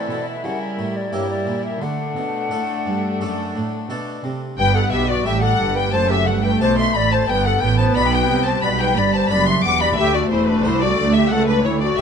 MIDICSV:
0, 0, Header, 1, 8, 480
1, 0, Start_track
1, 0, Key_signature, 1, "major"
1, 0, Tempo, 688863
1, 1263, Time_signature, 4, 2, 24, 8
1, 3194, Tempo, 672646
1, 8495, End_track
2, 0, Start_track
2, 0, Title_t, "Violin section"
2, 0, Program_c, 0, 48
2, 0, Note_on_c, 0, 69, 54
2, 295, Note_off_c, 0, 69, 0
2, 300, Note_on_c, 0, 70, 46
2, 770, Note_off_c, 0, 70, 0
2, 779, Note_on_c, 0, 70, 47
2, 1251, Note_off_c, 0, 70, 0
2, 1259, Note_on_c, 0, 69, 51
2, 3053, Note_off_c, 0, 69, 0
2, 3195, Note_on_c, 0, 79, 97
2, 3308, Note_off_c, 0, 79, 0
2, 3318, Note_on_c, 0, 78, 80
2, 3434, Note_on_c, 0, 76, 86
2, 3436, Note_off_c, 0, 78, 0
2, 3554, Note_off_c, 0, 76, 0
2, 3562, Note_on_c, 0, 74, 74
2, 3678, Note_on_c, 0, 76, 91
2, 3680, Note_off_c, 0, 74, 0
2, 3796, Note_off_c, 0, 76, 0
2, 3799, Note_on_c, 0, 78, 85
2, 4035, Note_off_c, 0, 78, 0
2, 4039, Note_on_c, 0, 79, 81
2, 4156, Note_on_c, 0, 81, 88
2, 4159, Note_off_c, 0, 79, 0
2, 4276, Note_off_c, 0, 81, 0
2, 4278, Note_on_c, 0, 76, 89
2, 4397, Note_off_c, 0, 76, 0
2, 4397, Note_on_c, 0, 78, 72
2, 4520, Note_off_c, 0, 78, 0
2, 4520, Note_on_c, 0, 79, 78
2, 4639, Note_off_c, 0, 79, 0
2, 4647, Note_on_c, 0, 81, 86
2, 4694, Note_off_c, 0, 81, 0
2, 4773, Note_on_c, 0, 84, 88
2, 4886, Note_off_c, 0, 84, 0
2, 4889, Note_on_c, 0, 83, 90
2, 5004, Note_off_c, 0, 83, 0
2, 5012, Note_on_c, 0, 81, 90
2, 5124, Note_on_c, 0, 79, 106
2, 5127, Note_off_c, 0, 81, 0
2, 5243, Note_off_c, 0, 79, 0
2, 5245, Note_on_c, 0, 78, 78
2, 5361, Note_off_c, 0, 78, 0
2, 5367, Note_on_c, 0, 79, 86
2, 5482, Note_off_c, 0, 79, 0
2, 5482, Note_on_c, 0, 81, 82
2, 5600, Note_off_c, 0, 81, 0
2, 5604, Note_on_c, 0, 83, 96
2, 5723, Note_off_c, 0, 83, 0
2, 5727, Note_on_c, 0, 79, 91
2, 5963, Note_on_c, 0, 81, 82
2, 5964, Note_off_c, 0, 79, 0
2, 6078, Note_on_c, 0, 83, 92
2, 6083, Note_off_c, 0, 81, 0
2, 6200, Note_off_c, 0, 83, 0
2, 6205, Note_on_c, 0, 79, 97
2, 6321, Note_on_c, 0, 83, 86
2, 6324, Note_off_c, 0, 79, 0
2, 6442, Note_off_c, 0, 83, 0
2, 6445, Note_on_c, 0, 81, 86
2, 6559, Note_on_c, 0, 83, 84
2, 6563, Note_off_c, 0, 81, 0
2, 6680, Note_off_c, 0, 83, 0
2, 6687, Note_on_c, 0, 84, 86
2, 6734, Note_off_c, 0, 84, 0
2, 6803, Note_on_c, 0, 86, 100
2, 6920, Note_off_c, 0, 86, 0
2, 6923, Note_on_c, 0, 83, 92
2, 6971, Note_off_c, 0, 83, 0
2, 7041, Note_on_c, 0, 76, 105
2, 7159, Note_off_c, 0, 76, 0
2, 7165, Note_on_c, 0, 74, 84
2, 7279, Note_on_c, 0, 72, 77
2, 7283, Note_off_c, 0, 74, 0
2, 7398, Note_off_c, 0, 72, 0
2, 7398, Note_on_c, 0, 71, 84
2, 7513, Note_on_c, 0, 72, 100
2, 7516, Note_off_c, 0, 71, 0
2, 7636, Note_off_c, 0, 72, 0
2, 7641, Note_on_c, 0, 74, 90
2, 7876, Note_on_c, 0, 76, 91
2, 7880, Note_off_c, 0, 74, 0
2, 7993, Note_on_c, 0, 78, 100
2, 7997, Note_off_c, 0, 76, 0
2, 8110, Note_on_c, 0, 71, 94
2, 8116, Note_off_c, 0, 78, 0
2, 8231, Note_off_c, 0, 71, 0
2, 8236, Note_on_c, 0, 73, 77
2, 8351, Note_on_c, 0, 74, 85
2, 8356, Note_off_c, 0, 73, 0
2, 8471, Note_off_c, 0, 74, 0
2, 8471, Note_on_c, 0, 76, 97
2, 8495, Note_off_c, 0, 76, 0
2, 8495, End_track
3, 0, Start_track
3, 0, Title_t, "Violin section"
3, 0, Program_c, 1, 48
3, 0, Note_on_c, 1, 64, 46
3, 300, Note_off_c, 1, 64, 0
3, 310, Note_on_c, 1, 64, 47
3, 775, Note_off_c, 1, 64, 0
3, 782, Note_on_c, 1, 64, 43
3, 1252, Note_off_c, 1, 64, 0
3, 1265, Note_on_c, 1, 62, 52
3, 3056, Note_off_c, 1, 62, 0
3, 3197, Note_on_c, 1, 79, 84
3, 3309, Note_off_c, 1, 79, 0
3, 3321, Note_on_c, 1, 78, 73
3, 3436, Note_on_c, 1, 76, 70
3, 3440, Note_off_c, 1, 78, 0
3, 3557, Note_off_c, 1, 76, 0
3, 3562, Note_on_c, 1, 74, 70
3, 3678, Note_off_c, 1, 74, 0
3, 3682, Note_on_c, 1, 76, 73
3, 3729, Note_off_c, 1, 76, 0
3, 3803, Note_on_c, 1, 78, 78
3, 4037, Note_off_c, 1, 78, 0
3, 4042, Note_on_c, 1, 79, 69
3, 4159, Note_off_c, 1, 79, 0
3, 4160, Note_on_c, 1, 81, 76
3, 4280, Note_off_c, 1, 81, 0
3, 4289, Note_on_c, 1, 76, 64
3, 4400, Note_on_c, 1, 78, 64
3, 4405, Note_off_c, 1, 76, 0
3, 4521, Note_off_c, 1, 78, 0
3, 4526, Note_on_c, 1, 79, 68
3, 4644, Note_off_c, 1, 79, 0
3, 4644, Note_on_c, 1, 81, 80
3, 4759, Note_on_c, 1, 84, 70
3, 4761, Note_off_c, 1, 81, 0
3, 4879, Note_off_c, 1, 84, 0
3, 4880, Note_on_c, 1, 83, 79
3, 4929, Note_off_c, 1, 83, 0
3, 4999, Note_on_c, 1, 81, 69
3, 5048, Note_off_c, 1, 81, 0
3, 5122, Note_on_c, 1, 79, 76
3, 5237, Note_on_c, 1, 78, 74
3, 5240, Note_off_c, 1, 79, 0
3, 5355, Note_on_c, 1, 79, 82
3, 5360, Note_off_c, 1, 78, 0
3, 5479, Note_off_c, 1, 79, 0
3, 5479, Note_on_c, 1, 81, 77
3, 5528, Note_off_c, 1, 81, 0
3, 5600, Note_on_c, 1, 83, 89
3, 5718, Note_off_c, 1, 83, 0
3, 5718, Note_on_c, 1, 79, 86
3, 5960, Note_off_c, 1, 79, 0
3, 5962, Note_on_c, 1, 81, 73
3, 6078, Note_on_c, 1, 83, 84
3, 6082, Note_off_c, 1, 81, 0
3, 6127, Note_off_c, 1, 83, 0
3, 6201, Note_on_c, 1, 79, 66
3, 6313, Note_on_c, 1, 83, 72
3, 6319, Note_off_c, 1, 79, 0
3, 6363, Note_off_c, 1, 83, 0
3, 6437, Note_on_c, 1, 81, 72
3, 6555, Note_on_c, 1, 83, 87
3, 6556, Note_off_c, 1, 81, 0
3, 6675, Note_off_c, 1, 83, 0
3, 6676, Note_on_c, 1, 84, 76
3, 6796, Note_on_c, 1, 86, 83
3, 6799, Note_off_c, 1, 84, 0
3, 6915, Note_on_c, 1, 83, 81
3, 6919, Note_off_c, 1, 86, 0
3, 7038, Note_off_c, 1, 83, 0
3, 7038, Note_on_c, 1, 76, 93
3, 7157, Note_on_c, 1, 74, 72
3, 7160, Note_off_c, 1, 76, 0
3, 7274, Note_on_c, 1, 72, 74
3, 7279, Note_off_c, 1, 74, 0
3, 7395, Note_off_c, 1, 72, 0
3, 7398, Note_on_c, 1, 71, 75
3, 7515, Note_on_c, 1, 72, 81
3, 7519, Note_off_c, 1, 71, 0
3, 7636, Note_on_c, 1, 74, 85
3, 7637, Note_off_c, 1, 72, 0
3, 7872, Note_off_c, 1, 74, 0
3, 7875, Note_on_c, 1, 76, 74
3, 7989, Note_on_c, 1, 78, 84
3, 7997, Note_off_c, 1, 76, 0
3, 8111, Note_on_c, 1, 71, 59
3, 8114, Note_off_c, 1, 78, 0
3, 8228, Note_on_c, 1, 73, 62
3, 8232, Note_off_c, 1, 71, 0
3, 8348, Note_on_c, 1, 74, 79
3, 8352, Note_off_c, 1, 73, 0
3, 8398, Note_off_c, 1, 74, 0
3, 8468, Note_on_c, 1, 76, 84
3, 8495, Note_off_c, 1, 76, 0
3, 8495, End_track
4, 0, Start_track
4, 0, Title_t, "Flute"
4, 0, Program_c, 2, 73
4, 0, Note_on_c, 2, 74, 57
4, 187, Note_on_c, 2, 76, 60
4, 198, Note_off_c, 2, 74, 0
4, 308, Note_on_c, 2, 78, 64
4, 318, Note_off_c, 2, 76, 0
4, 426, Note_off_c, 2, 78, 0
4, 429, Note_on_c, 2, 76, 60
4, 668, Note_on_c, 2, 74, 57
4, 678, Note_off_c, 2, 76, 0
4, 788, Note_on_c, 2, 73, 65
4, 798, Note_off_c, 2, 74, 0
4, 898, Note_off_c, 2, 73, 0
4, 902, Note_on_c, 2, 74, 55
4, 1137, Note_off_c, 2, 74, 0
4, 1142, Note_on_c, 2, 76, 57
4, 1268, Note_on_c, 2, 78, 76
4, 1279, Note_off_c, 2, 76, 0
4, 2717, Note_off_c, 2, 78, 0
4, 3193, Note_on_c, 2, 71, 76
4, 3303, Note_off_c, 2, 71, 0
4, 3307, Note_on_c, 2, 69, 69
4, 3350, Note_off_c, 2, 69, 0
4, 3427, Note_on_c, 2, 67, 73
4, 3546, Note_off_c, 2, 67, 0
4, 3550, Note_on_c, 2, 66, 71
4, 3675, Note_on_c, 2, 67, 73
4, 3686, Note_off_c, 2, 66, 0
4, 3789, Note_on_c, 2, 69, 68
4, 3800, Note_off_c, 2, 67, 0
4, 4027, Note_on_c, 2, 71, 66
4, 4038, Note_off_c, 2, 69, 0
4, 4142, Note_off_c, 2, 71, 0
4, 4146, Note_on_c, 2, 72, 85
4, 4276, Note_on_c, 2, 67, 68
4, 4287, Note_off_c, 2, 72, 0
4, 4393, Note_on_c, 2, 69, 66
4, 4403, Note_off_c, 2, 67, 0
4, 4518, Note_off_c, 2, 69, 0
4, 4522, Note_on_c, 2, 71, 67
4, 4565, Note_off_c, 2, 71, 0
4, 4636, Note_on_c, 2, 72, 93
4, 4757, Note_off_c, 2, 72, 0
4, 4764, Note_on_c, 2, 76, 76
4, 4887, Note_on_c, 2, 74, 84
4, 4898, Note_off_c, 2, 76, 0
4, 4998, Note_off_c, 2, 74, 0
4, 5002, Note_on_c, 2, 72, 84
4, 5113, Note_off_c, 2, 72, 0
4, 5117, Note_on_c, 2, 71, 76
4, 5246, Note_on_c, 2, 69, 77
4, 5256, Note_off_c, 2, 71, 0
4, 5359, Note_on_c, 2, 71, 72
4, 5369, Note_off_c, 2, 69, 0
4, 5469, Note_off_c, 2, 71, 0
4, 5473, Note_on_c, 2, 72, 70
4, 5591, Note_off_c, 2, 72, 0
4, 5595, Note_on_c, 2, 74, 71
4, 5638, Note_off_c, 2, 74, 0
4, 5719, Note_on_c, 2, 71, 74
4, 5957, Note_on_c, 2, 72, 64
4, 5968, Note_off_c, 2, 71, 0
4, 6078, Note_off_c, 2, 72, 0
4, 6083, Note_on_c, 2, 74, 82
4, 6125, Note_off_c, 2, 74, 0
4, 6204, Note_on_c, 2, 71, 76
4, 6315, Note_off_c, 2, 71, 0
4, 6319, Note_on_c, 2, 74, 75
4, 6438, Note_off_c, 2, 74, 0
4, 6451, Note_on_c, 2, 72, 75
4, 6561, Note_on_c, 2, 74, 92
4, 6572, Note_off_c, 2, 72, 0
4, 6681, Note_off_c, 2, 74, 0
4, 6689, Note_on_c, 2, 76, 78
4, 6799, Note_off_c, 2, 76, 0
4, 6803, Note_on_c, 2, 78, 91
4, 6921, Note_on_c, 2, 74, 81
4, 6931, Note_off_c, 2, 78, 0
4, 7041, Note_off_c, 2, 74, 0
4, 7046, Note_on_c, 2, 67, 90
4, 7164, Note_on_c, 2, 66, 76
4, 7174, Note_off_c, 2, 67, 0
4, 7282, Note_on_c, 2, 64, 82
4, 7293, Note_off_c, 2, 66, 0
4, 7406, Note_on_c, 2, 62, 69
4, 7416, Note_off_c, 2, 64, 0
4, 7532, Note_on_c, 2, 64, 75
4, 7542, Note_off_c, 2, 62, 0
4, 7645, Note_on_c, 2, 66, 78
4, 7656, Note_off_c, 2, 64, 0
4, 7876, Note_off_c, 2, 66, 0
4, 7880, Note_on_c, 2, 67, 75
4, 7995, Note_on_c, 2, 69, 86
4, 8005, Note_off_c, 2, 67, 0
4, 8109, Note_off_c, 2, 69, 0
4, 8113, Note_on_c, 2, 62, 74
4, 8233, Note_on_c, 2, 64, 66
4, 8244, Note_off_c, 2, 62, 0
4, 8352, Note_off_c, 2, 64, 0
4, 8356, Note_on_c, 2, 66, 78
4, 8473, Note_on_c, 2, 67, 94
4, 8484, Note_off_c, 2, 66, 0
4, 8495, Note_off_c, 2, 67, 0
4, 8495, End_track
5, 0, Start_track
5, 0, Title_t, "Viola section"
5, 0, Program_c, 3, 48
5, 0, Note_on_c, 3, 52, 49
5, 298, Note_off_c, 3, 52, 0
5, 306, Note_on_c, 3, 55, 46
5, 772, Note_off_c, 3, 55, 0
5, 780, Note_on_c, 3, 55, 49
5, 1252, Note_off_c, 3, 55, 0
5, 1261, Note_on_c, 3, 57, 58
5, 3054, Note_off_c, 3, 57, 0
5, 3195, Note_on_c, 3, 59, 67
5, 3650, Note_off_c, 3, 59, 0
5, 3672, Note_on_c, 3, 55, 61
5, 4150, Note_on_c, 3, 57, 63
5, 4156, Note_off_c, 3, 55, 0
5, 5118, Note_off_c, 3, 57, 0
5, 5120, Note_on_c, 3, 59, 68
5, 6079, Note_on_c, 3, 55, 59
5, 6081, Note_off_c, 3, 59, 0
5, 7020, Note_off_c, 3, 55, 0
5, 7042, Note_on_c, 3, 57, 79
5, 7980, Note_off_c, 3, 57, 0
5, 8000, Note_on_c, 3, 57, 70
5, 8495, Note_off_c, 3, 57, 0
5, 8495, End_track
6, 0, Start_track
6, 0, Title_t, "Harpsichord"
6, 0, Program_c, 4, 6
6, 0, Note_on_c, 4, 60, 32
6, 0, Note_on_c, 4, 64, 33
6, 0, Note_on_c, 4, 69, 37
6, 73, Note_on_c, 4, 47, 43
6, 177, Note_off_c, 4, 60, 0
6, 179, Note_off_c, 4, 64, 0
6, 180, Note_off_c, 4, 69, 0
6, 285, Note_off_c, 4, 47, 0
6, 307, Note_on_c, 4, 49, 39
6, 521, Note_off_c, 4, 49, 0
6, 548, Note_on_c, 4, 45, 37
6, 761, Note_off_c, 4, 45, 0
6, 785, Note_on_c, 4, 58, 32
6, 786, Note_on_c, 4, 43, 42
6, 788, Note_on_c, 4, 64, 35
6, 792, Note_on_c, 4, 67, 35
6, 999, Note_off_c, 4, 43, 0
6, 1024, Note_on_c, 4, 46, 37
6, 1129, Note_off_c, 4, 58, 0
6, 1131, Note_off_c, 4, 64, 0
6, 1134, Note_off_c, 4, 67, 0
6, 1240, Note_off_c, 4, 46, 0
6, 1266, Note_on_c, 4, 50, 42
6, 1483, Note_off_c, 4, 50, 0
6, 1509, Note_on_c, 4, 47, 42
6, 1725, Note_off_c, 4, 47, 0
6, 1749, Note_on_c, 4, 45, 40
6, 1749, Note_on_c, 4, 57, 29
6, 1750, Note_on_c, 4, 62, 29
6, 1755, Note_on_c, 4, 69, 34
6, 1923, Note_off_c, 4, 57, 0
6, 1966, Note_off_c, 4, 45, 0
6, 1995, Note_on_c, 4, 43, 40
6, 2098, Note_off_c, 4, 62, 0
6, 2101, Note_off_c, 4, 69, 0
6, 2210, Note_off_c, 4, 43, 0
6, 2237, Note_on_c, 4, 42, 43
6, 2237, Note_on_c, 4, 57, 30
6, 2240, Note_on_c, 4, 62, 33
6, 2242, Note_on_c, 4, 69, 35
6, 2452, Note_off_c, 4, 42, 0
6, 2478, Note_on_c, 4, 45, 36
6, 2583, Note_off_c, 4, 57, 0
6, 2585, Note_off_c, 4, 62, 0
6, 2586, Note_off_c, 4, 69, 0
6, 2693, Note_off_c, 4, 45, 0
6, 2716, Note_on_c, 4, 47, 36
6, 2716, Note_on_c, 4, 57, 35
6, 2719, Note_on_c, 4, 62, 29
6, 2722, Note_on_c, 4, 69, 35
6, 2890, Note_off_c, 4, 57, 0
6, 2933, Note_off_c, 4, 47, 0
6, 2954, Note_on_c, 4, 48, 37
6, 3064, Note_off_c, 4, 62, 0
6, 3066, Note_off_c, 4, 69, 0
6, 3170, Note_off_c, 4, 48, 0
6, 3193, Note_on_c, 4, 43, 50
6, 3412, Note_off_c, 4, 43, 0
6, 3434, Note_on_c, 4, 47, 61
6, 3653, Note_off_c, 4, 47, 0
6, 3675, Note_on_c, 4, 62, 45
6, 3677, Note_on_c, 4, 45, 57
6, 3680, Note_on_c, 4, 67, 45
6, 3894, Note_off_c, 4, 45, 0
6, 3921, Note_on_c, 4, 43, 57
6, 4023, Note_off_c, 4, 62, 0
6, 4026, Note_off_c, 4, 67, 0
6, 4136, Note_off_c, 4, 43, 0
6, 4158, Note_on_c, 4, 42, 58
6, 4376, Note_off_c, 4, 42, 0
6, 4402, Note_on_c, 4, 43, 53
6, 4619, Note_off_c, 4, 43, 0
6, 4641, Note_on_c, 4, 62, 42
6, 4642, Note_on_c, 4, 47, 59
6, 4645, Note_on_c, 4, 72, 49
6, 4859, Note_off_c, 4, 47, 0
6, 4883, Note_on_c, 4, 45, 55
6, 4988, Note_off_c, 4, 62, 0
6, 4990, Note_off_c, 4, 72, 0
6, 5099, Note_off_c, 4, 45, 0
6, 5122, Note_on_c, 4, 43, 54
6, 5338, Note_off_c, 4, 43, 0
6, 5364, Note_on_c, 4, 45, 52
6, 5579, Note_off_c, 4, 45, 0
6, 5604, Note_on_c, 4, 59, 46
6, 5605, Note_on_c, 4, 47, 53
6, 5608, Note_on_c, 4, 62, 46
6, 5611, Note_on_c, 4, 71, 48
6, 5776, Note_off_c, 4, 59, 0
6, 5778, Note_off_c, 4, 62, 0
6, 5819, Note_off_c, 4, 47, 0
6, 5841, Note_on_c, 4, 48, 54
6, 5953, Note_off_c, 4, 71, 0
6, 6058, Note_off_c, 4, 48, 0
6, 6084, Note_on_c, 4, 47, 64
6, 6084, Note_on_c, 4, 59, 47
6, 6300, Note_off_c, 4, 47, 0
6, 6324, Note_on_c, 4, 43, 51
6, 6538, Note_off_c, 4, 43, 0
6, 6556, Note_off_c, 4, 59, 0
6, 6563, Note_on_c, 4, 42, 54
6, 6564, Note_on_c, 4, 59, 44
6, 6566, Note_on_c, 4, 62, 52
6, 6568, Note_on_c, 4, 71, 51
6, 6736, Note_off_c, 4, 59, 0
6, 6737, Note_off_c, 4, 62, 0
6, 6778, Note_off_c, 4, 42, 0
6, 6804, Note_on_c, 4, 40, 57
6, 6911, Note_off_c, 4, 71, 0
6, 7019, Note_off_c, 4, 40, 0
6, 7040, Note_on_c, 4, 38, 60
6, 7257, Note_off_c, 4, 38, 0
6, 7281, Note_on_c, 4, 40, 57
6, 7496, Note_off_c, 4, 40, 0
6, 7520, Note_on_c, 4, 36, 62
6, 7520, Note_on_c, 4, 62, 49
6, 7523, Note_on_c, 4, 66, 46
6, 7736, Note_off_c, 4, 36, 0
6, 7758, Note_on_c, 4, 38, 61
6, 7865, Note_off_c, 4, 62, 0
6, 7867, Note_off_c, 4, 66, 0
6, 7974, Note_off_c, 4, 38, 0
6, 7996, Note_on_c, 4, 37, 63
6, 8213, Note_off_c, 4, 37, 0
6, 8236, Note_on_c, 4, 38, 55
6, 8452, Note_off_c, 4, 38, 0
6, 8495, End_track
7, 0, Start_track
7, 0, Title_t, "Cello section"
7, 0, Program_c, 5, 48
7, 69, Note_on_c, 5, 47, 53
7, 289, Note_off_c, 5, 47, 0
7, 305, Note_on_c, 5, 49, 48
7, 527, Note_off_c, 5, 49, 0
7, 541, Note_on_c, 5, 45, 49
7, 764, Note_off_c, 5, 45, 0
7, 781, Note_on_c, 5, 43, 51
7, 1004, Note_off_c, 5, 43, 0
7, 1019, Note_on_c, 5, 46, 49
7, 1244, Note_off_c, 5, 46, 0
7, 1261, Note_on_c, 5, 50, 55
7, 1487, Note_off_c, 5, 50, 0
7, 1502, Note_on_c, 5, 47, 54
7, 1729, Note_off_c, 5, 47, 0
7, 1746, Note_on_c, 5, 45, 46
7, 1971, Note_off_c, 5, 45, 0
7, 1984, Note_on_c, 5, 43, 43
7, 2211, Note_off_c, 5, 43, 0
7, 2226, Note_on_c, 5, 42, 48
7, 2454, Note_off_c, 5, 42, 0
7, 2470, Note_on_c, 5, 45, 47
7, 2696, Note_off_c, 5, 45, 0
7, 2711, Note_on_c, 5, 47, 49
7, 2938, Note_off_c, 5, 47, 0
7, 2954, Note_on_c, 5, 48, 54
7, 3178, Note_off_c, 5, 48, 0
7, 3195, Note_on_c, 5, 43, 75
7, 3420, Note_off_c, 5, 43, 0
7, 3435, Note_on_c, 5, 47, 65
7, 3673, Note_off_c, 5, 47, 0
7, 3675, Note_on_c, 5, 45, 69
7, 3913, Note_off_c, 5, 45, 0
7, 3917, Note_on_c, 5, 43, 65
7, 4154, Note_off_c, 5, 43, 0
7, 4156, Note_on_c, 5, 42, 63
7, 4396, Note_on_c, 5, 43, 68
7, 4399, Note_off_c, 5, 42, 0
7, 4640, Note_off_c, 5, 43, 0
7, 4644, Note_on_c, 5, 47, 67
7, 4879, Note_off_c, 5, 47, 0
7, 4886, Note_on_c, 5, 45, 68
7, 5120, Note_off_c, 5, 45, 0
7, 5125, Note_on_c, 5, 43, 67
7, 5359, Note_off_c, 5, 43, 0
7, 5368, Note_on_c, 5, 45, 67
7, 5600, Note_off_c, 5, 45, 0
7, 5606, Note_on_c, 5, 47, 65
7, 5839, Note_off_c, 5, 47, 0
7, 5844, Note_on_c, 5, 48, 63
7, 6083, Note_off_c, 5, 48, 0
7, 6085, Note_on_c, 5, 47, 70
7, 6319, Note_off_c, 5, 47, 0
7, 6324, Note_on_c, 5, 43, 67
7, 6562, Note_off_c, 5, 43, 0
7, 6562, Note_on_c, 5, 42, 62
7, 6796, Note_off_c, 5, 42, 0
7, 6802, Note_on_c, 5, 40, 70
7, 7037, Note_off_c, 5, 40, 0
7, 7044, Note_on_c, 5, 38, 77
7, 7283, Note_off_c, 5, 38, 0
7, 7283, Note_on_c, 5, 40, 67
7, 7516, Note_off_c, 5, 40, 0
7, 7522, Note_on_c, 5, 36, 70
7, 7759, Note_on_c, 5, 38, 69
7, 7760, Note_off_c, 5, 36, 0
7, 7994, Note_off_c, 5, 38, 0
7, 7996, Note_on_c, 5, 37, 68
7, 8232, Note_off_c, 5, 37, 0
7, 8235, Note_on_c, 5, 38, 76
7, 8471, Note_off_c, 5, 38, 0
7, 8495, End_track
8, 0, Start_track
8, 0, Title_t, "Double bass section"
8, 0, Program_c, 6, 48
8, 3192, Note_on_c, 6, 31, 70
8, 3418, Note_off_c, 6, 31, 0
8, 3434, Note_on_c, 6, 35, 61
8, 3672, Note_off_c, 6, 35, 0
8, 3677, Note_on_c, 6, 33, 68
8, 3914, Note_off_c, 6, 33, 0
8, 3917, Note_on_c, 6, 31, 72
8, 4154, Note_off_c, 6, 31, 0
8, 4159, Note_on_c, 6, 30, 69
8, 4399, Note_on_c, 6, 31, 62
8, 4400, Note_off_c, 6, 30, 0
8, 4641, Note_off_c, 6, 31, 0
8, 4642, Note_on_c, 6, 35, 69
8, 4878, Note_off_c, 6, 35, 0
8, 4884, Note_on_c, 6, 33, 63
8, 5119, Note_off_c, 6, 33, 0
8, 5126, Note_on_c, 6, 31, 76
8, 5359, Note_off_c, 6, 31, 0
8, 5363, Note_on_c, 6, 33, 68
8, 5598, Note_off_c, 6, 33, 0
8, 5604, Note_on_c, 6, 35, 83
8, 5838, Note_off_c, 6, 35, 0
8, 5843, Note_on_c, 6, 36, 72
8, 6082, Note_on_c, 6, 35, 75
8, 6083, Note_off_c, 6, 36, 0
8, 6317, Note_off_c, 6, 35, 0
8, 6322, Note_on_c, 6, 31, 64
8, 6560, Note_on_c, 6, 30, 77
8, 6561, Note_off_c, 6, 31, 0
8, 6795, Note_off_c, 6, 30, 0
8, 6798, Note_on_c, 6, 28, 66
8, 7035, Note_off_c, 6, 28, 0
8, 7039, Note_on_c, 6, 38, 72
8, 7279, Note_on_c, 6, 28, 67
8, 7280, Note_off_c, 6, 38, 0
8, 7514, Note_off_c, 6, 28, 0
8, 7517, Note_on_c, 6, 36, 74
8, 7756, Note_on_c, 6, 38, 71
8, 7758, Note_off_c, 6, 36, 0
8, 7993, Note_off_c, 6, 38, 0
8, 7998, Note_on_c, 6, 37, 79
8, 8233, Note_off_c, 6, 37, 0
8, 8238, Note_on_c, 6, 38, 78
8, 8472, Note_off_c, 6, 38, 0
8, 8495, End_track
0, 0, End_of_file